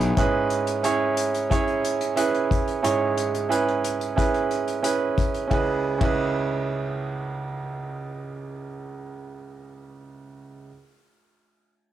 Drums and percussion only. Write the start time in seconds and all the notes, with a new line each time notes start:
0.01 closed hi-hat
0.17 kick, closed hi-hat
0.50 closed hi-hat
0.67 closed hi-hat
0.84 closed hi-hat
1.17 closed hi-hat
1.34 closed hi-hat
1.51 kick, closed hi-hat
1.68 closed hi-hat
1.84 closed hi-hat
2.01 closed hi-hat
2.17 closed hi-hat
2.35 closed hi-hat
2.51 kick, closed hi-hat
2.68 closed hi-hat
2.84 closed hi-hat
3.17 closed hi-hat
3.35 closed hi-hat
3.52 closed hi-hat
3.68 closed hi-hat
3.84 closed hi-hat
4.01 closed hi-hat
4.18 kick, closed hi-hat
4.34 closed hi-hat
4.51 closed hi-hat
4.68 closed hi-hat
4.84 closed hi-hat
5.18 kick, closed hi-hat
5.34 closed hi-hat
5.51 kick, ride
6.01 kick, ride